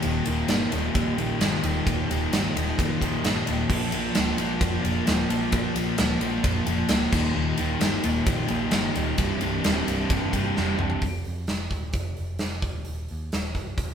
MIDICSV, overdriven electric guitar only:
0, 0, Header, 1, 2, 480
1, 0, Start_track
1, 0, Tempo, 458015
1, 56, Time_signature, 4, 2, 24, 8
1, 14609, End_track
2, 0, Start_track
2, 0, Title_t, "Overdriven electric guitar"
2, 0, Program_c, 0, 29
2, 50, Note_on_c, 0, 39, 100
2, 57, Note_on_c, 0, 46, 106
2, 68, Note_on_c, 0, 51, 101
2, 284, Note_off_c, 0, 46, 0
2, 288, Note_off_c, 0, 39, 0
2, 292, Note_on_c, 0, 39, 86
2, 297, Note_on_c, 0, 46, 92
2, 299, Note_off_c, 0, 51, 0
2, 303, Note_on_c, 0, 51, 97
2, 512, Note_off_c, 0, 46, 0
2, 521, Note_off_c, 0, 39, 0
2, 525, Note_on_c, 0, 39, 95
2, 525, Note_on_c, 0, 46, 108
2, 529, Note_off_c, 0, 51, 0
2, 533, Note_on_c, 0, 51, 108
2, 746, Note_off_c, 0, 46, 0
2, 748, Note_off_c, 0, 39, 0
2, 752, Note_on_c, 0, 39, 89
2, 759, Note_on_c, 0, 46, 79
2, 766, Note_off_c, 0, 51, 0
2, 770, Note_on_c, 0, 51, 83
2, 979, Note_off_c, 0, 39, 0
2, 988, Note_off_c, 0, 46, 0
2, 991, Note_on_c, 0, 39, 100
2, 993, Note_off_c, 0, 51, 0
2, 1001, Note_on_c, 0, 46, 112
2, 1006, Note_on_c, 0, 51, 99
2, 1222, Note_off_c, 0, 39, 0
2, 1230, Note_off_c, 0, 46, 0
2, 1235, Note_on_c, 0, 39, 87
2, 1241, Note_off_c, 0, 51, 0
2, 1242, Note_on_c, 0, 46, 94
2, 1254, Note_on_c, 0, 51, 96
2, 1452, Note_off_c, 0, 39, 0
2, 1464, Note_off_c, 0, 46, 0
2, 1465, Note_on_c, 0, 39, 104
2, 1470, Note_off_c, 0, 51, 0
2, 1476, Note_on_c, 0, 46, 100
2, 1483, Note_on_c, 0, 51, 96
2, 1704, Note_off_c, 0, 39, 0
2, 1707, Note_off_c, 0, 46, 0
2, 1715, Note_off_c, 0, 51, 0
2, 1717, Note_on_c, 0, 39, 90
2, 1719, Note_on_c, 0, 46, 93
2, 1728, Note_on_c, 0, 51, 101
2, 1946, Note_off_c, 0, 39, 0
2, 1955, Note_off_c, 0, 46, 0
2, 1958, Note_on_c, 0, 39, 102
2, 1961, Note_off_c, 0, 51, 0
2, 1968, Note_on_c, 0, 46, 107
2, 1973, Note_on_c, 0, 51, 109
2, 2188, Note_off_c, 0, 39, 0
2, 2194, Note_off_c, 0, 46, 0
2, 2200, Note_on_c, 0, 39, 82
2, 2206, Note_on_c, 0, 46, 83
2, 2207, Note_off_c, 0, 51, 0
2, 2219, Note_on_c, 0, 51, 93
2, 2434, Note_off_c, 0, 39, 0
2, 2436, Note_off_c, 0, 46, 0
2, 2447, Note_on_c, 0, 39, 105
2, 2448, Note_off_c, 0, 51, 0
2, 2448, Note_on_c, 0, 46, 103
2, 2461, Note_on_c, 0, 51, 105
2, 2672, Note_off_c, 0, 39, 0
2, 2682, Note_off_c, 0, 46, 0
2, 2685, Note_on_c, 0, 39, 76
2, 2687, Note_off_c, 0, 51, 0
2, 2694, Note_on_c, 0, 46, 95
2, 2700, Note_on_c, 0, 51, 94
2, 2913, Note_off_c, 0, 39, 0
2, 2924, Note_off_c, 0, 46, 0
2, 2924, Note_off_c, 0, 51, 0
2, 2926, Note_on_c, 0, 39, 102
2, 2936, Note_on_c, 0, 46, 116
2, 2937, Note_on_c, 0, 51, 95
2, 3153, Note_off_c, 0, 39, 0
2, 3160, Note_off_c, 0, 46, 0
2, 3165, Note_on_c, 0, 39, 83
2, 3170, Note_off_c, 0, 51, 0
2, 3172, Note_on_c, 0, 46, 83
2, 3182, Note_on_c, 0, 51, 96
2, 3399, Note_off_c, 0, 39, 0
2, 3401, Note_off_c, 0, 46, 0
2, 3410, Note_off_c, 0, 51, 0
2, 3411, Note_on_c, 0, 39, 101
2, 3413, Note_on_c, 0, 46, 109
2, 3423, Note_on_c, 0, 51, 104
2, 3639, Note_off_c, 0, 39, 0
2, 3643, Note_off_c, 0, 46, 0
2, 3651, Note_off_c, 0, 51, 0
2, 3651, Note_on_c, 0, 39, 84
2, 3656, Note_on_c, 0, 46, 92
2, 3663, Note_on_c, 0, 51, 87
2, 3867, Note_off_c, 0, 46, 0
2, 3873, Note_off_c, 0, 39, 0
2, 3879, Note_off_c, 0, 51, 0
2, 3879, Note_on_c, 0, 46, 94
2, 3887, Note_on_c, 0, 53, 101
2, 3888, Note_on_c, 0, 58, 102
2, 4106, Note_off_c, 0, 46, 0
2, 4110, Note_on_c, 0, 46, 91
2, 4117, Note_off_c, 0, 53, 0
2, 4119, Note_off_c, 0, 58, 0
2, 4122, Note_on_c, 0, 53, 96
2, 4123, Note_on_c, 0, 58, 94
2, 4339, Note_off_c, 0, 46, 0
2, 4343, Note_on_c, 0, 46, 98
2, 4351, Note_off_c, 0, 53, 0
2, 4351, Note_off_c, 0, 58, 0
2, 4355, Note_on_c, 0, 53, 103
2, 4355, Note_on_c, 0, 58, 118
2, 4579, Note_off_c, 0, 46, 0
2, 4588, Note_off_c, 0, 53, 0
2, 4591, Note_on_c, 0, 46, 84
2, 4601, Note_off_c, 0, 58, 0
2, 4601, Note_on_c, 0, 53, 91
2, 4605, Note_on_c, 0, 58, 92
2, 4818, Note_off_c, 0, 46, 0
2, 4829, Note_off_c, 0, 53, 0
2, 4831, Note_on_c, 0, 46, 96
2, 4841, Note_off_c, 0, 58, 0
2, 4842, Note_on_c, 0, 53, 110
2, 4845, Note_on_c, 0, 58, 100
2, 5055, Note_off_c, 0, 46, 0
2, 5057, Note_off_c, 0, 53, 0
2, 5068, Note_on_c, 0, 46, 86
2, 5070, Note_on_c, 0, 53, 97
2, 5075, Note_off_c, 0, 58, 0
2, 5079, Note_on_c, 0, 58, 99
2, 5287, Note_off_c, 0, 46, 0
2, 5298, Note_off_c, 0, 53, 0
2, 5300, Note_on_c, 0, 46, 94
2, 5311, Note_off_c, 0, 58, 0
2, 5311, Note_on_c, 0, 53, 92
2, 5315, Note_on_c, 0, 58, 93
2, 5528, Note_off_c, 0, 46, 0
2, 5537, Note_off_c, 0, 53, 0
2, 5540, Note_on_c, 0, 46, 73
2, 5549, Note_on_c, 0, 53, 87
2, 5552, Note_off_c, 0, 58, 0
2, 5556, Note_on_c, 0, 58, 92
2, 5761, Note_off_c, 0, 46, 0
2, 5772, Note_off_c, 0, 53, 0
2, 5774, Note_on_c, 0, 46, 97
2, 5784, Note_on_c, 0, 53, 93
2, 5785, Note_off_c, 0, 58, 0
2, 5789, Note_on_c, 0, 58, 105
2, 6014, Note_off_c, 0, 46, 0
2, 6020, Note_off_c, 0, 53, 0
2, 6026, Note_on_c, 0, 46, 92
2, 6032, Note_on_c, 0, 53, 83
2, 6037, Note_off_c, 0, 58, 0
2, 6041, Note_on_c, 0, 58, 95
2, 6248, Note_off_c, 0, 46, 0
2, 6260, Note_off_c, 0, 53, 0
2, 6260, Note_on_c, 0, 46, 97
2, 6272, Note_on_c, 0, 53, 122
2, 6273, Note_off_c, 0, 58, 0
2, 6277, Note_on_c, 0, 58, 97
2, 6490, Note_off_c, 0, 46, 0
2, 6500, Note_off_c, 0, 53, 0
2, 6503, Note_on_c, 0, 46, 79
2, 6512, Note_on_c, 0, 53, 83
2, 6515, Note_off_c, 0, 58, 0
2, 6519, Note_on_c, 0, 58, 90
2, 6725, Note_off_c, 0, 46, 0
2, 6732, Note_off_c, 0, 53, 0
2, 6737, Note_on_c, 0, 46, 108
2, 6744, Note_on_c, 0, 53, 108
2, 6747, Note_off_c, 0, 58, 0
2, 6751, Note_on_c, 0, 58, 116
2, 6970, Note_off_c, 0, 46, 0
2, 6976, Note_off_c, 0, 53, 0
2, 6983, Note_on_c, 0, 46, 96
2, 6989, Note_on_c, 0, 53, 94
2, 6990, Note_off_c, 0, 58, 0
2, 6994, Note_on_c, 0, 58, 91
2, 7207, Note_off_c, 0, 46, 0
2, 7219, Note_off_c, 0, 53, 0
2, 7219, Note_on_c, 0, 46, 96
2, 7231, Note_on_c, 0, 53, 99
2, 7234, Note_off_c, 0, 58, 0
2, 7238, Note_on_c, 0, 58, 102
2, 7454, Note_off_c, 0, 46, 0
2, 7460, Note_off_c, 0, 53, 0
2, 7465, Note_on_c, 0, 39, 88
2, 7471, Note_on_c, 0, 46, 98
2, 7472, Note_off_c, 0, 58, 0
2, 7476, Note_on_c, 0, 51, 107
2, 7680, Note_off_c, 0, 39, 0
2, 7690, Note_off_c, 0, 46, 0
2, 7692, Note_on_c, 0, 39, 89
2, 7700, Note_off_c, 0, 51, 0
2, 7703, Note_on_c, 0, 46, 105
2, 7712, Note_on_c, 0, 51, 118
2, 7938, Note_off_c, 0, 39, 0
2, 7948, Note_off_c, 0, 46, 0
2, 7950, Note_on_c, 0, 39, 85
2, 7956, Note_off_c, 0, 51, 0
2, 7960, Note_on_c, 0, 46, 93
2, 7969, Note_on_c, 0, 51, 100
2, 8172, Note_off_c, 0, 39, 0
2, 8177, Note_off_c, 0, 46, 0
2, 8182, Note_off_c, 0, 51, 0
2, 8184, Note_on_c, 0, 39, 102
2, 8189, Note_on_c, 0, 46, 123
2, 8195, Note_on_c, 0, 51, 115
2, 8412, Note_off_c, 0, 39, 0
2, 8418, Note_off_c, 0, 46, 0
2, 8423, Note_off_c, 0, 51, 0
2, 8425, Note_on_c, 0, 39, 81
2, 8430, Note_on_c, 0, 46, 90
2, 8435, Note_on_c, 0, 51, 91
2, 8651, Note_off_c, 0, 39, 0
2, 8662, Note_off_c, 0, 46, 0
2, 8664, Note_off_c, 0, 51, 0
2, 8664, Note_on_c, 0, 39, 89
2, 8675, Note_on_c, 0, 46, 106
2, 8676, Note_on_c, 0, 51, 103
2, 8896, Note_off_c, 0, 39, 0
2, 8902, Note_off_c, 0, 46, 0
2, 8908, Note_on_c, 0, 39, 90
2, 8909, Note_off_c, 0, 51, 0
2, 8915, Note_on_c, 0, 46, 88
2, 8922, Note_on_c, 0, 51, 86
2, 9130, Note_off_c, 0, 39, 0
2, 9137, Note_off_c, 0, 46, 0
2, 9143, Note_on_c, 0, 39, 104
2, 9144, Note_off_c, 0, 51, 0
2, 9149, Note_on_c, 0, 46, 108
2, 9157, Note_on_c, 0, 51, 108
2, 9373, Note_off_c, 0, 39, 0
2, 9378, Note_off_c, 0, 46, 0
2, 9385, Note_on_c, 0, 39, 93
2, 9387, Note_off_c, 0, 51, 0
2, 9391, Note_on_c, 0, 46, 91
2, 9400, Note_on_c, 0, 51, 99
2, 9616, Note_off_c, 0, 39, 0
2, 9619, Note_off_c, 0, 46, 0
2, 9623, Note_off_c, 0, 51, 0
2, 9643, Note_on_c, 0, 36, 84
2, 9644, Note_on_c, 0, 43, 107
2, 9657, Note_on_c, 0, 48, 111
2, 9864, Note_off_c, 0, 36, 0
2, 9867, Note_off_c, 0, 43, 0
2, 9874, Note_off_c, 0, 48, 0
2, 9876, Note_on_c, 0, 36, 86
2, 9880, Note_on_c, 0, 43, 95
2, 9887, Note_on_c, 0, 48, 102
2, 10099, Note_off_c, 0, 36, 0
2, 10105, Note_off_c, 0, 43, 0
2, 10111, Note_on_c, 0, 36, 104
2, 10113, Note_off_c, 0, 48, 0
2, 10118, Note_on_c, 0, 43, 109
2, 10125, Note_on_c, 0, 48, 114
2, 10338, Note_off_c, 0, 36, 0
2, 10348, Note_off_c, 0, 43, 0
2, 10350, Note_on_c, 0, 36, 81
2, 10351, Note_off_c, 0, 48, 0
2, 10361, Note_on_c, 0, 43, 89
2, 10364, Note_on_c, 0, 48, 87
2, 10581, Note_off_c, 0, 36, 0
2, 10594, Note_on_c, 0, 36, 94
2, 10595, Note_off_c, 0, 43, 0
2, 10596, Note_off_c, 0, 48, 0
2, 10608, Note_on_c, 0, 43, 95
2, 10609, Note_on_c, 0, 48, 102
2, 10813, Note_off_c, 0, 36, 0
2, 10819, Note_off_c, 0, 43, 0
2, 10826, Note_on_c, 0, 36, 88
2, 10827, Note_off_c, 0, 48, 0
2, 10832, Note_on_c, 0, 43, 86
2, 10840, Note_on_c, 0, 48, 93
2, 11065, Note_off_c, 0, 36, 0
2, 11074, Note_off_c, 0, 43, 0
2, 11075, Note_off_c, 0, 48, 0
2, 11077, Note_on_c, 0, 36, 91
2, 11086, Note_on_c, 0, 43, 93
2, 11087, Note_on_c, 0, 48, 102
2, 11301, Note_off_c, 0, 36, 0
2, 11314, Note_off_c, 0, 48, 0
2, 11314, Note_on_c, 0, 36, 91
2, 11316, Note_off_c, 0, 43, 0
2, 11327, Note_on_c, 0, 48, 94
2, 11329, Note_on_c, 0, 43, 88
2, 11541, Note_off_c, 0, 36, 0
2, 11548, Note_off_c, 0, 48, 0
2, 11549, Note_off_c, 0, 43, 0
2, 14609, End_track
0, 0, End_of_file